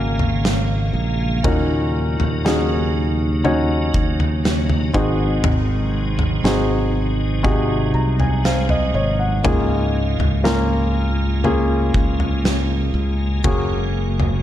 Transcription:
0.00 0.90 G#1 medium
0.00 4.91 C#3 medium
0.00 1.41 G#3 medium
0.00 1.46 A#3 medium
0.00 4.91 A#3 medium
0.00 1.44 C#4 medium
0.00 1.44 F#4 medium
0.00 1.45 A#4 medium
0.00 1.44 F5 medium
0.19 floor tom medium
0.45 snare loud
0.93 1.41 A#1 medium
1.43 2.15 D#2 medium
1.43 2.91 A#2 medium
1.43 9.40 F#3 medium
1.43 2.39 C#4 medium
1.43 9.40 D#4 medium
1.43 2.40 D#4 medium
1.43 2.40 F#4 medium
1.43 2.40 A#4 medium
1.43 kick loud
1.43 floor tom loud
2.20 3.91 D#2 medium
2.20 floor tom medium
2.45 3.40 C#4 medium
2.45 3.40 D#4 medium
2.45 3.40 F#4 medium
2.45 3.40 G#4 medium
2.45 snare loud
3.44 4.95 C#4 medium
3.44 4.93 D#4 medium
3.44 4.93 F#4 medium
3.44 4.95 C#5 medium
3.44 floor tom medium
3.94 4.91 D#2 medium
3.94 kick medium
4.20 floor tom medium
4.45 snare loud
4.70 floor tom medium
4.94 5.41 G#1 loud
4.94 6.40 G#2 medium
4.94 9.41 C3 medium
4.94 6.41 D#3 medium
4.94 9.41 G#3 medium
4.94 6.37 C4 medium
4.94 6.37 D#4 medium
4.94 6.37 F#4 medium
4.94 6.37 G#4 medium
4.94 kick loud
5.44 6.40 G#1 loud
5.44 floor tom loud
6.19 floor tom medium
6.44 7.90 G#1 medium
6.44 7.39 C4 medium
6.44 7.40 D#4 medium
6.44 7.40 F#4 medium
6.44 7.40 G#4 medium
6.44 snare loud
7.43 9.34 C3 medium
7.43 9.34 D#4 medium
7.43 9.34 F#4 medium
7.43 9.34 G#4 medium
7.43 kick medium
7.43 floor tom medium
7.94 8.90 C2 medium
7.94 8.18 A#5 medium
8.20 8.43 G#5 medium
8.20 floor tom medium
8.45 8.92 C5 medium
8.45 8.68 F5 medium
8.45 snare loud
8.69 8.93 D#5 medium
8.69 floor tom medium
8.94 9.41 G#1 medium
8.94 9.41 C#5 medium
8.94 9.18 D#5 medium
9.19 9.67 F#5 medium
9.43 10.16 C#2 medium
9.43 10.91 G#2 medium
9.43 14.43 C#3 medium
9.43 14.43 G#3 medium
9.43 10.39 A#3 medium
9.43 14.43 A#3 medium
9.43 10.40 C#4 medium
9.43 13.40 F4 medium
9.43 10.40 F4 medium
9.43 10.40 G#4 medium
9.43 kick loud
9.43 floor tom loud
10.19 11.90 C#2 medium
10.19 floor tom medium
10.44 11.39 A#3 medium
10.44 11.39 C#4 medium
10.44 11.39 F4 medium
10.44 11.40 A#4 medium
10.44 snare loud
11.44 13.34 A#3 medium
11.44 13.35 C#4 medium
11.44 13.35 F4 medium
11.44 13.35 G#4 medium
11.44 floor tom medium
11.94 12.91 C#2 medium
11.94 kick medium
12.20 floor tom soft
12.45 snare loud
12.94 13.41 C#2 medium
13.44 14.41 F#1 medium
13.44 14.43 C#3 medium
13.44 14.40 A#3 medium
13.44 14.40 C#4 medium
13.44 14.43 F#4 medium
13.44 14.40 F#4 medium
13.44 14.40 G#4 medium
13.44 kick loud
13.44 floor tom loud
14.20 floor tom medium

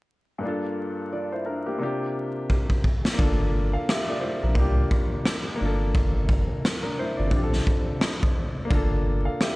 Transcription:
0.38 1.76 G2 medium
0.38 1.09 A#3 medium
0.43 1.11 D4 medium
0.43 1.12 F4 medium
0.48 1.13 A4 medium
1.13 1.32 F4 medium
1.13 1.31 D5 medium
1.32 1.46 E4 medium
1.32 1.46 C5 medium
1.46 1.65 D4 medium
1.46 1.65 A#4 medium
1.66 1.78 A#3 soft
1.66 1.82 G4 medium
1.78 2.83 C3 medium
1.78 2.84 A#3 medium
1.78 2.84 D4 medium
1.78 2.85 F4 medium
1.83 2.85 G4 medium
2.50 kick medium
2.70 kick medium
2.84 kick medium
3.05 snare medium
3.13 4.51 A#3 medium
3.13 3.51 D4 medium
3.19 3.77 G1 loud
3.19 3.53 F4 medium
3.19 3.55 A4 medium
3.19 kick loud
3.73 3.87 A4 medium
3.73 3.87 F5 medium
3.89 4.08 G4 medium
3.89 4.08 E5 medium
3.89 cross-stick medium
3.89 snare loud
4.09 4.22 F4 medium
4.09 4.22 D5 medium
4.20 4.40 E4 medium
4.20 4.40 C5 medium
4.43 4.55 A#1 medium
4.43 4.55 D4 medium
4.43 4.75 A#4 medium
4.55 4.85 C2 loud
4.55 5.54 A#3 medium
4.55 5.57 D4 medium
4.55 4.65 E4 medium
4.55 kick medium
4.59 5.61 G4 medium
4.64 5.60 F4 medium
4.91 kick medium
5.25 cross-stick loud
5.25 snare loud
5.56 7.27 A#3 medium
5.56 6.61 D4 medium
5.61 6.48 G1 loud
5.61 6.62 F4 medium
5.65 6.64 A4 medium
5.95 kick loud
6.29 kick loud
6.65 cross-stick medium
6.65 snare loud
6.82 6.97 D4 medium
6.82 6.97 A#4 medium
6.99 7.18 E4 medium
6.99 7.18 C5 medium
7.17 7.31 G1 loud
7.17 7.32 F4 medium
7.17 7.50 D5 medium
7.27 8.65 C4 medium
7.27 8.66 D4 medium
7.31 7.61 A#1 loud
7.31 8.68 F4 medium
7.31 kick medium
7.36 7.42 G4 medium
7.43 8.73 A4 medium
7.53 snare soft
7.67 kick medium
8.01 cross-stick loud
8.01 snare loud
8.23 kick loud
8.65 9.56 A#3 medium
8.65 9.03 D4 medium
8.71 9.29 G1 loud
8.71 9.05 F4 medium
8.71 9.06 A4 medium
8.71 kick loud
9.25 9.39 A4 medium
9.25 9.39 F5 medium
9.41 9.56 G4 medium
9.41 9.56 E5 medium
9.41 cross-stick medium
9.41 snare loud

